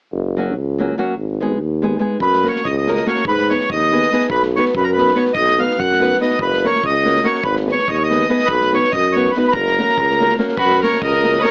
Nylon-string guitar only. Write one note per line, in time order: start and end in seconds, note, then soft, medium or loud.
0.37 0.53 F#3 medium
0.37 0.53 A#3 soft
0.37 0.53 C#4 soft
0.37 0.54 F#4 soft
0.78 0.94 F#3 medium
0.78 0.94 A#3 medium
0.78 0.95 C#4 medium
0.78 0.95 F#4 medium
0.98 1.13 F#3 medium
0.98 1.13 A#3 medium
0.98 1.13 C#4 medium
0.98 1.14 F#4 medium
1.40 1.57 G#3 medium
1.40 1.57 B3 soft
1.40 1.57 D#4 medium
1.40 1.58 G#4 medium
1.82 1.98 G#3 medium
1.82 1.98 B3 medium
1.82 1.99 D#4 medium
1.82 1.99 G#4 medium
1.99 2.16 G#3 medium
1.99 2.16 B3 medium
1.99 2.17 D#4 medium
1.99 2.17 G#4 medium
2.43 2.61 A#3 medium
2.43 2.61 C#4 soft
2.43 2.62 F#4 soft
2.43 2.62 A#4 soft
2.87 3.03 A#3 medium
2.87 3.04 C#4 medium
2.87 3.04 F#4 medium
2.87 3.04 A#4 medium
3.06 3.22 A#3 medium
3.06 3.22 C#4 medium
3.06 3.22 F#4 medium
3.06 3.23 A#4 medium
3.50 3.67 B3 soft
3.50 3.67 D#4 soft
3.50 3.67 G#4 soft
3.50 3.68 B4 medium
3.92 4.08 B3 medium
3.92 4.08 D#4 medium
3.92 4.09 G#4 medium
3.92 4.09 B4 medium
4.12 4.28 B3 medium
4.12 4.28 D#4 medium
4.12 4.28 G#4 medium
4.12 4.29 B4 medium
4.56 4.72 B3 soft
4.56 4.73 D#4 medium
4.56 4.73 F#4 medium
4.56 4.73 B4 medium
4.98 5.13 B3 medium
4.98 5.14 D#4 medium
4.98 5.14 F#4 medium
4.98 5.14 B4 medium
5.15 5.31 B3 medium
5.15 5.32 D#4 medium
5.15 5.32 F#4 medium
5.15 5.32 B4 medium
5.58 5.75 B3 medium
5.58 5.76 D#4 soft
5.58 5.76 F#4 soft
5.58 5.77 B4 medium
5.99 6.16 B3 medium
5.99 6.16 D#4 medium
5.99 6.17 F#4 medium
5.99 6.18 B4 medium
6.20 6.36 B3 medium
6.20 6.37 D#4 medium
6.20 6.37 F#4 medium
6.20 6.37 B4 medium
6.64 6.80 A#3 medium
6.64 6.81 C#4 soft
6.64 6.81 F#4 medium
6.64 6.81 A#4 medium
7.04 7.21 A#3 soft
7.04 7.21 C#4 medium
7.04 7.21 F#4 medium
7.04 7.22 A#4 medium
7.24 7.40 A#3 medium
7.24 7.40 C#4 medium
7.24 7.40 F#4 medium
7.24 7.41 A#4 medium
7.65 7.84 B3 soft
7.65 7.84 D#4 medium
7.65 7.84 G#4 soft
7.65 7.85 B4 medium
8.10 8.26 B3 medium
8.10 8.26 D#4 medium
8.10 8.27 G#4 soft
8.10 8.27 B4 medium
8.29 8.45 B3 medium
8.29 8.45 D#4 medium
8.29 8.45 G#4 medium
8.29 8.46 B4 medium
8.72 8.89 B3 medium
8.72 8.89 D#4 medium
8.72 8.90 F#4 soft
8.72 8.90 B4 medium
9.15 9.31 B3 medium
9.15 9.32 D#4 medium
9.15 9.32 F#4 soft
9.15 9.32 B4 medium
9.36 9.51 B3 medium
9.36 9.51 D#4 medium
9.36 9.52 F#4 medium
9.36 9.52 B4 medium
9.78 9.94 A#3 medium
9.78 9.95 C#4 medium
9.78 9.95 F#4 medium
9.78 9.95 A#4 medium
10.20 10.36 A#3 medium
10.20 10.36 C#4 medium
10.20 10.37 F#4 medium
10.20 10.37 A#4 medium
10.38 10.54 A#3 medium
10.38 10.54 C#4 medium
10.38 10.55 F#4 medium
10.38 10.55 A#4 medium
10.83 10.99 A#3 medium
10.83 10.99 C#4 medium
10.83 10.99 F#4 soft
10.83 10.99 A#4 medium
11.23 11.39 A#3 medium
11.23 11.39 C#4 soft
11.23 11.40 F#4 medium
11.23 11.40 A#4 medium
11.43 11.51 A#3 medium
11.43 11.51 C#4 medium
11.43 11.51 F#4 medium
11.43 11.51 A#4 medium